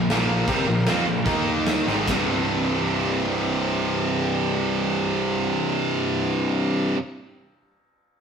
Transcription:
0.00 2.05 A#3 medium
0.00 2.05 F4 medium
0.00 1.24 A#4 loud
0.10 0.45 A#1 medium
0.10 0.47 A#2 loud
0.10 0.47 F3 loud
0.10 0.47 A#3 loud
0.10 snare loud
0.10 china medium
0.47 0.66 C2 loud
0.47 0.66 C3 loud
0.47 0.66 G3 loud
0.47 0.67 C4 loud
0.47 kick loud
0.47 china medium
0.67 0.85 A#1 medium
0.67 0.82 A#2 medium
0.67 0.82 F3 medium
0.86 1.04 F2 loud
0.86 1.05 F3 loud
0.86 1.05 C4 loud
0.86 1.06 F4 loud
0.86 snare loud
0.86 china medium
1.05 1.24 A#1 medium
1.05 1.21 A#2 medium
1.05 1.22 F3 medium
1.25 1.82 D#2 loud
1.25 1.86 D#3 loud
1.25 1.86 D#3 medium
1.25 1.86 A#3 loud
1.25 1.86 D#4 loud
1.25 1.86 D#5 medium
1.25 kick loud
1.25 china medium
1.67 snare loud
1.67 china medium
1.86 2.06 G#1 loud
1.86 2.06 G#2 medium
1.86 2.07 D#3 loud
1.86 2.07 G#3 loud
1.86 snare medium
2.06 6.91 C1 medium
2.06 6.95 C2 medium
2.06 6.96 G2 loud
2.06 6.21 C4 medium
2.06 6.21 G4 medium
2.06 6.21 D5 medium
2.06 6.21 D#5 medium
2.06 kick loud
2.06 snare loud
2.06 ride bell medium
2.10 6.97 C3 loud

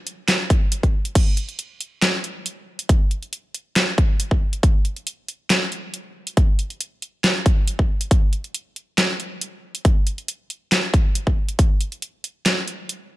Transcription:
0.07 closed hi-hat medium
0.28 snare loud
0.28 clap medium
0.28 closed hi-hat medium
0.50 kick loud
0.50 closed hi-hat medium
0.72 closed hi-hat medium
0.83 kick medium
0.83 closed hi-hat soft
1.05 closed hi-hat medium
1.15 kick loud
1.15 closed hi-hat medium
1.15 crash medium
1.37 closed hi-hat medium
1.49 closed hi-hat soft
1.59 closed hi-hat medium
1.81 closed hi-hat medium
2.02 snare loud
2.02 clap medium
2.02 closed hi-hat medium
2.24 closed hi-hat medium
2.46 closed hi-hat medium
2.79 closed hi-hat medium
2.89 kick loud
2.89 closed hi-hat medium
3.11 closed hi-hat medium
3.23 closed hi-hat soft
3.33 closed hi-hat medium
3.54 closed hi-hat medium
3.76 snare loud
3.76 clap loud
3.76 closed hi-hat medium
3.98 kick loud
3.98 closed hi-hat medium
4.20 closed hi-hat medium
4.31 kick medium
4.53 closed hi-hat medium
4.63 kick loud
4.63 closed hi-hat medium
4.85 closed hi-hat medium
4.96 closed hi-hat soft
5.07 closed hi-hat medium
5.28 closed hi-hat medium
5.50 snare loud
5.50 clap medium
5.50 closed hi-hat medium
5.72 closed hi-hat medium
5.94 closed hi-hat medium
6.27 closed hi-hat medium
6.37 kick loud
6.37 closed hi-hat medium
6.59 closed hi-hat soft
6.70 closed hi-hat soft
6.81 closed hi-hat medium
7.02 closed hi-hat medium
7.24 snare loud
7.24 clap medium
7.24 closed hi-hat medium
7.46 kick loud
7.46 closed hi-hat medium
7.68 closed hi-hat medium
7.79 kick medium
8.01 closed hi-hat medium
8.11 kick loud
8.11 closed hi-hat medium
8.33 closed hi-hat medium
8.44 closed hi-hat soft
8.54 closed hi-hat medium
8.76 closed hi-hat medium
8.98 snare loud
8.98 clap medium
8.98 closed hi-hat medium
9.20 closed hi-hat medium
9.41 closed hi-hat medium
9.75 closed hi-hat medium
9.85 kick loud
9.85 closed hi-hat medium
10.07 closed hi-hat medium
10.18 closed hi-hat soft
10.28 closed hi-hat medium
10.50 closed hi-hat medium
10.72 snare loud
10.72 clap medium
10.72 closed hi-hat medium
10.94 kick loud
10.94 closed hi-hat medium
11.15 closed hi-hat medium
11.27 kick medium
11.49 closed hi-hat medium
11.59 kick loud
11.59 closed hi-hat medium
11.81 closed hi-hat medium
11.92 closed hi-hat soft
12.02 closed hi-hat medium
12.24 closed hi-hat medium
12.46 snare loud
12.46 clap medium
12.46 closed hi-hat medium
12.68 closed hi-hat medium
12.89 closed hi-hat medium

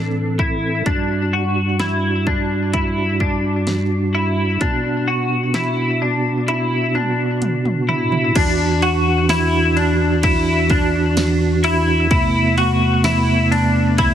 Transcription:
0.00 0.82 A2 medium
0.00 0.82 E3 medium
0.00 0.82 C4 medium
0.00 0.39 D4 medium
0.00 0.84 A4 medium
0.39 0.86 E4 medium
0.39 kick medium
0.86 4.57 G2 medium
0.86 4.57 G3 soft
0.86 8.32 D4 soft
0.86 1.33 D4 medium
0.86 4.57 F#4 medium
0.86 kick loud
0.86 closed hi-hat medium
1.33 1.79 F#4 medium
1.80 2.27 E4 medium
1.80 snare medium
1.80 closed hi-hat medium
2.27 2.74 D4 medium
2.27 kick medium
2.73 3.20 E4 medium
2.73 kick medium
2.73 closed hi-hat medium
3.20 4.14 D4 medium
3.20 kick medium
3.67 snare medium
3.67 closed hi-hat medium
4.15 4.61 E4 medium
4.61 8.32 B2 medium
4.61 8.33 B3 medium
4.61 5.08 D4 medium
4.61 8.33 F#4 medium
4.61 kick medium
4.61 closed hi-hat medium
5.08 5.54 F#4 medium
5.54 6.02 E4 medium
5.54 snare loud
5.54 closed hi-hat medium
6.02 6.48 D4 medium
6.48 6.95 E4 medium
6.48 closed hi-hat medium
6.48 high tom soft
6.95 7.89 D4 medium
6.95 mid tom medium
7.42 closed hi-hat medium
7.42 mid tom medium
7.65 mid tom medium
7.89 8.36 E4 medium
7.89 floor tom medium
8.12 floor tom medium
8.35 14.14 E2 medium
8.35 12.07 E3 medium
8.35 8.83 D4 medium
8.35 12.07 D4 medium
8.35 12.07 F#4 medium
8.35 kick loud
8.35 crash medium
8.35 ride medium
8.82 9.29 F#4 medium
8.82 ride soft
9.29 9.77 E4 medium
9.29 snare loud
9.29 ride medium
9.29 tambourine medium
9.76 10.23 D4 medium
9.76 ride soft
10.23 10.70 E4 medium
10.23 kick medium
10.23 ride medium
10.70 11.64 D4 medium
10.70 kick medium
10.70 ride soft
11.17 snare loud
11.17 ride medium
11.17 tambourine medium
11.64 12.10 E4 medium
11.64 ride medium
12.11 14.14 C3 medium
12.11 14.14 A3 medium
12.11 14.14 B3 medium
12.11 12.57 E4 medium
12.11 kick loud
12.11 ride medium
12.58 13.04 F#4 medium
12.58 ride soft
13.04 13.52 E4 medium
13.04 snare loud
13.04 ride medium
13.04 tambourine medium
13.51 13.98 D4 medium
13.51 ride soft
13.98 14.14 E4 medium
13.98 kick medium
13.98 ride medium

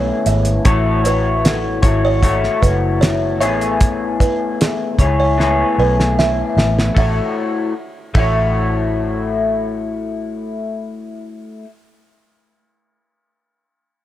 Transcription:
0.00 0.10 B1 medium
0.00 0.65 A3 medium
0.00 0.64 B3 medium
0.00 0.20 C#4 medium
0.00 0.21 E4 medium
0.00 0.64 E4 medium
0.00 0.22 G#4 medium
0.00 0.65 G#4 medium
0.00 0.23 B4 medium
0.00 0.66 C#5 medium
0.26 0.58 G#1 medium
0.26 0.45 E5 medium
0.26 closed hi-hat medium
0.45 closed hi-hat soft
0.65 1.80 A1 loud
0.65 1.05 A3 medium
0.65 1.05 E4 medium
0.65 1.04 F#4 medium
0.65 1.03 C#5 medium
0.65 kick loud
0.65 closed hi-hat medium
1.04 1.84 E4 soft
1.04 1.83 F#4 soft
1.04 1.24 B4 medium
1.04 1.82 C#5 medium
1.04 closed hi-hat medium
1.45 1.63 A4 medium
1.45 snare loud
1.45 closed hi-hat medium
1.82 2.46 G#1 medium
1.82 2.22 E4 soft
1.82 2.23 F#4 soft
1.82 2.23 C#5 medium
1.82 kick medium
1.82 closed hi-hat medium
2.05 2.23 C#5 medium
2.23 3.41 A3 medium
2.23 3.42 E4 medium
2.23 3.41 F#4 medium
2.23 3.40 C#5 medium
2.23 kick medium
2.23 closed hi-hat medium
2.44 snare soft
2.62 3.42 F#1 medium
2.62 3.00 B4 medium
2.62 kick medium
2.62 closed hi-hat medium
3.01 3.20 C#5 medium
3.01 snare loud
3.01 closed hi-hat medium
3.41 4.68 A1 medium
3.41 5.04 A3 medium
3.41 5.00 B3 medium
3.41 5.01 E4 medium
3.41 5.00 G#4 medium
3.41 4.99 C#5 medium
3.41 3.60 E5 medium
3.41 closed hi-hat medium
3.61 closed hi-hat soft
3.81 kick loud
3.81 closed hi-hat medium
4.20 4.39 B4 medium
4.20 kick medium
4.20 closed hi-hat medium
4.61 4.79 G#4 medium
4.61 snare medium
4.61 closed hi-hat medium
4.99 5.62 C#2 medium
4.99 5.38 E4 soft
4.99 5.39 G#4 soft
4.99 5.39 C#5 soft
4.99 kick medium
4.99 closed hi-hat medium
5.20 5.38 C#5 medium
5.38 6.95 A3 medium
5.38 6.94 B3 medium
5.38 6.97 E4 medium
5.38 6.97 G#4 medium
5.38 7.00 C#5 medium
5.38 snare soft
5.78 6.42 B1 medium
5.78 6.17 B4 medium
6.00 snare medium
6.19 6.37 E5 medium
6.19 snare medium
6.57 6.89 A1 medium
6.57 6.76 E5 medium
6.57 snare medium
6.79 snare medium
6.95 7.19 A1 medium
6.95 7.72 A3 medium
6.95 7.72 E4 medium
6.95 7.72 F#4 medium
6.95 7.20 E5 medium
6.95 kick medium
6.95 ride medium
7.00 7.72 C#5 medium
8.14 11.59 A1 medium
8.14 11.64 A3 medium
8.14 11.66 E4 medium
8.14 11.67 F#4 medium
8.14 9.31 E5 medium
8.14 kick medium
8.14 ride medium
8.19 11.69 C#5 medium

